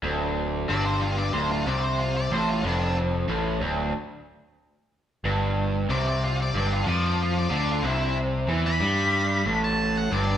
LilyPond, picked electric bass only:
\new Staff \with { instrumentName = "Picked electric bass" } { \clef bass \time 4/4 \key g \major \tempo 4 = 92 d,,4 g,,4 d,,8 c,4 a,,8 | f,,4 a,,8 d,,8 r2 | g,,4 c,4 g,,8 f,4 d,8 | c,4 e,8 g,4 a,,4 g,,8 | }